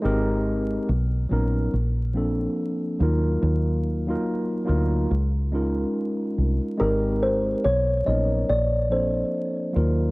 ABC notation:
X:1
M:4/4
L:1/16
Q:"Swing 16ths" 1/4=71
K:Eblyd
V:1 name="Kalimba"
z16 | z16 | B2 c2 ^c2 ^d2 =d2 =c6 |]
V:2 name="Tine electric piano"
[_A,CEGB]4 z2 [^F,=B,^C^D^A]2 z2 [=F,_B,=C=D=A]4 [_G,B,EFB]2- | [_G,B,EFB]2 z [G,B,EFB]2 z [G,B,EFB]2 z2 [_A,_DEFB]4 z2 | [_A,CEGB]4 z2 [^F,=B,^C^D^A]2 z2 [=F,_B,=C=D=A]4 [_G,B,EFB]2 |]
V:3 name="Fingered electric bass" clef=bass
_A,,,4 =B,,,2 ^A,,,2 _B,,,4 z2 E,,2 | E,,4 z2 D,,2 _D,,4 z2 C,, z | _A,,,4 =B,,,2 ^A,,,2 _B,,,4 z2 E,,2 |]